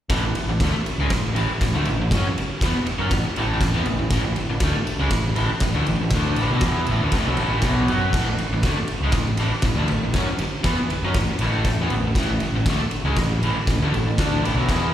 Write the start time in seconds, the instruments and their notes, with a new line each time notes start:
0.09 picked electric bass A1, overdriven electric guitar A2 E3, kick, snare, ride
0.22 picked electric bass A1, overdriven electric guitar A2 E3
0.35 muted picked electric bass stroke, muted overdriven electric guitar stroke, ride
0.46 picked electric bass A1, overdriven electric guitar A2 E3
0.60 picked electric bass D2, overdriven electric guitar D3 A3, kick, snare, ride
0.72 muted picked electric bass stroke, muted overdriven electric guitar stroke
0.86 ride
0.98 picked electric bass C#2, overdriven electric guitar C#3
1.02 overdriven electric guitar G#3
1.10 picked electric bass A1, overdriven electric guitar A2 E3, kick, snare, ride
1.34 picked electric bass A1, overdriven electric guitar A2 E3, ride
1.49 muted picked electric bass stroke, muted overdriven electric guitar stroke
1.60 picked electric bass A1, overdriven electric guitar A2 E3, kick, snare, ride
1.74 picked electric bass D2, overdriven electric guitar D3 A3
1.85 picked electric bass A1, overdriven electric guitar A2 E3, ride
1.99 picked electric bass A1, overdriven electric guitar A2 E3
2.11 picked electric bass F#2, overdriven electric guitar F#3, kick, snare, ride
2.16 overdriven electric guitar C#4
2.24 muted picked electric bass stroke
2.28 muted overdriven electric guitar stroke
2.37 muted picked electric bass stroke, muted overdriven electric guitar stroke, ride
2.61 picked electric bass E2, overdriven electric guitar E3, kick, snare, ride
2.66 overdriven electric guitar B3
2.72 muted picked electric bass stroke
2.77 muted overdriven electric guitar stroke
2.86 muted picked electric bass stroke, muted overdriven electric guitar stroke, ride
2.98 picked electric bass F#2, overdriven electric guitar F#3 C#4
3.11 picked electric bass A1, overdriven electric guitar A2 E3, kick, snare, ride
3.26 muted overdriven electric guitar stroke, muted picked electric bass stroke
3.36 picked electric bass A1, overdriven electric guitar A2 E3 A3, ride
3.61 picked electric bass A1, overdriven electric guitar A2 E3, kick, snare, ride
3.73 picked electric bass E2, overdriven electric guitar E3 B3
3.86 picked electric bass A1, overdriven electric guitar A2 E3, ride
3.98 picked electric bass A1, overdriven electric guitar A2 E3
4.10 picked electric bass A1, overdriven electric guitar A2 E3, kick, snare, ride
4.22 picked electric bass A1, overdriven electric guitar A2 E3
4.36 muted picked electric bass stroke, muted overdriven electric guitar stroke, ride
4.50 picked electric bass A1, overdriven electric guitar A2 E3
4.60 picked electric bass D2, overdriven electric guitar D3 A3, kick, snare, ride
4.74 muted picked electric bass stroke, muted overdriven electric guitar stroke
4.87 ride
4.98 picked electric bass C#2, overdriven electric guitar C#3 G#3
5.10 picked electric bass A1, overdriven electric guitar A2 E3, kick, snare, ride
5.35 picked electric bass A1, overdriven electric guitar A2 E3, ride
5.50 muted picked electric bass stroke, muted overdriven electric guitar stroke
5.60 picked electric bass A1, overdriven electric guitar A2 E3, kick, snare, ride
5.74 picked electric bass D2, overdriven electric guitar D3 A3
5.86 picked electric bass A1, overdriven electric guitar A2 E3, ride
5.99 picked electric bass A1, overdriven electric guitar A2 E3
6.10 picked electric bass D2, kick, snare, ride
6.15 overdriven electric guitar D3 A3 D4
6.36 picked electric bass A1, overdriven electric guitar A2 E3, ride
6.50 picked electric bass B1, overdriven electric guitar B2 F#3
6.61 picked electric bass E2, kick, snare, ride
6.65 overdriven electric guitar E3 B3 E4
6.87 picked electric bass A1, overdriven electric guitar A2, ride
6.91 overdriven electric guitar E3
7.00 picked electric bass D2, overdriven electric guitar D3 A3
7.12 picked electric bass A1, overdriven electric guitar A2, kick, snare, ride
7.16 overdriven electric guitar E3
7.26 picked electric bass B1, overdriven electric guitar B2 F#3
7.37 picked electric bass A1, overdriven electric guitar A2 E3 A3, ride
7.62 picked electric bass B1, overdriven electric guitar B2 F#3, kick, snare, ride
7.66 overdriven electric guitar B3
7.88 picked electric bass F#2, overdriven electric guitar F#3 C#4 F#4, ride
8.13 picked electric bass A1, overdriven electric guitar A2 E3, kick, snare, crash
8.25 picked electric bass A1, overdriven electric guitar A2
8.29 overdriven electric guitar E3
8.37 muted picked electric bass stroke, muted overdriven electric guitar stroke, ride
8.49 picked electric bass A1, overdriven electric guitar A2
8.54 overdriven electric guitar E3
8.63 picked electric bass D2, overdriven electric guitar D3 A3, kick, snare, ride
8.75 muted picked electric bass stroke, muted overdriven electric guitar stroke
8.88 ride
9.01 picked electric bass C#2, overdriven electric guitar C#3
9.05 overdriven electric guitar G#3
9.12 picked electric bass A1, overdriven electric guitar A2 E3, kick, snare, ride
9.37 picked electric bass A1, overdriven electric guitar A2 E3, ride
9.52 muted overdriven electric guitar stroke, muted picked electric bass stroke
9.62 picked electric bass A1, overdriven electric guitar A2 E3, kick, snare, ride
9.75 picked electric bass D2, overdriven electric guitar D3 A3
9.88 picked electric bass A1, overdriven electric guitar A2 E3, ride
10.01 picked electric bass A1, overdriven electric guitar A2 E3
10.13 picked electric bass F#2, overdriven electric guitar F#3 C#4, kick, snare, ride
10.28 muted picked electric bass stroke, muted overdriven electric guitar stroke
10.38 muted picked electric bass stroke, muted overdriven electric guitar stroke, ride
10.63 picked electric bass E2, overdriven electric guitar E3 B3, kick, snare, ride
10.77 muted picked electric bass stroke, muted overdriven electric guitar stroke
10.89 muted picked electric bass stroke, ride
10.93 muted overdriven electric guitar stroke
11.02 picked electric bass F#2, overdriven electric guitar F#3 C#4
11.14 picked electric bass A1, kick, snare, ride
11.18 overdriven electric guitar A2 E3
11.27 muted picked electric bass stroke
11.31 muted overdriven electric guitar stroke
11.39 picked electric bass A1, overdriven electric guitar A2 E3, ride
11.44 overdriven electric guitar A3
11.64 picked electric bass A1, overdriven electric guitar A2, kick, snare, ride
11.69 overdriven electric guitar E3
11.76 picked electric bass E2
11.81 overdriven electric guitar E3 B3
11.90 picked electric bass A1, overdriven electric guitar A2, ride
11.94 overdriven electric guitar E3
12.02 picked electric bass A1
12.07 overdriven electric guitar A2 E3
12.15 picked electric bass A1, overdriven electric guitar A2, kick, snare, ride
12.20 overdriven electric guitar E3
12.28 picked electric bass A1, overdriven electric guitar E3
12.32 overdriven electric guitar A2
12.40 muted picked electric bass stroke, muted overdriven electric guitar stroke, ride
12.52 picked electric bass A1, overdriven electric guitar A2
12.57 overdriven electric guitar E3
12.65 picked electric bass D2, overdriven electric guitar D3 A3, kick, snare, ride
12.78 muted picked electric bass stroke, muted overdriven electric guitar stroke
12.91 ride
13.04 picked electric bass C#2, overdriven electric guitar C#3 G#3
13.16 picked electric bass A1, overdriven electric guitar A2 E3, kick, snare, ride
13.40 picked electric bass A1, overdriven electric guitar A2, ride
13.46 overdriven electric guitar E3
13.54 muted picked electric bass stroke, muted overdriven electric guitar stroke
13.67 picked electric bass A1, overdriven electric guitar A2 E3, kick, snare, ride
13.78 picked electric bass D2
13.83 overdriven electric guitar D3 A3
13.92 picked electric bass A1, ride
13.97 overdriven electric guitar A2 E3
14.03 picked electric bass A1
14.08 overdriven electric guitar A2 E3
14.18 picked electric bass D2, overdriven electric guitar D3 A3 D4, kick, snare, ride
14.41 picked electric bass A1, overdriven electric guitar A2 E3, ride
14.53 picked electric bass B1, overdriven electric guitar B2 F#3
14.69 picked electric bass E2, overdriven electric guitar E3 B3 E4, kick, snare, ride